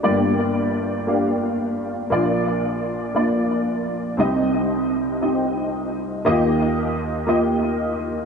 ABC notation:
X:1
M:6/8
L:1/8
Q:3/8=58
K:Eblyd
V:1 name="Upright piano"
[B,DGd]3 [B,DGf]3 | [B,DFd]3 [B,DFd]3 | [CEGe]3 [CEGe]3 | [B,FGe]3 [B,FGe]3 |]
V:2 name="Upright piano" clef=bass
[G,,,G,,]6 | [B,,,B,,]6 | [C,,C,]6 | [E,,E,]6 |]